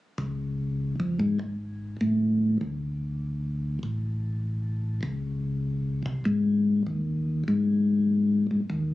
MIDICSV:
0, 0, Header, 1, 2, 480
1, 0, Start_track
1, 0, Tempo, 607903
1, 148, Time_signature, 4, 2, 24, 8
1, 7060, End_track
2, 0, Start_track
2, 0, Title_t, "Tonewheel organ"
2, 0, Program_c, 0, 16
2, 144, Note_on_c, 0, 37, 69
2, 754, Note_off_c, 0, 37, 0
2, 788, Note_on_c, 0, 41, 55
2, 937, Note_off_c, 0, 41, 0
2, 944, Note_on_c, 0, 44, 50
2, 1095, Note_off_c, 0, 44, 0
2, 1101, Note_on_c, 0, 32, 67
2, 1553, Note_off_c, 0, 32, 0
2, 1586, Note_on_c, 0, 45, 55
2, 2035, Note_off_c, 0, 45, 0
2, 2061, Note_on_c, 0, 38, 72
2, 2993, Note_off_c, 0, 38, 0
2, 3025, Note_on_c, 0, 33, 70
2, 3955, Note_off_c, 0, 33, 0
2, 3970, Note_on_c, 0, 37, 70
2, 4759, Note_off_c, 0, 37, 0
2, 4784, Note_on_c, 0, 36, 56
2, 4929, Note_off_c, 0, 36, 0
2, 4939, Note_on_c, 0, 44, 71
2, 5391, Note_off_c, 0, 44, 0
2, 5421, Note_on_c, 0, 39, 53
2, 5872, Note_off_c, 0, 39, 0
2, 5906, Note_on_c, 0, 44, 72
2, 6686, Note_off_c, 0, 44, 0
2, 6719, Note_on_c, 0, 44, 34
2, 6793, Note_off_c, 0, 44, 0
2, 6867, Note_on_c, 0, 39, 74
2, 7060, Note_off_c, 0, 39, 0
2, 7060, End_track
0, 0, End_of_file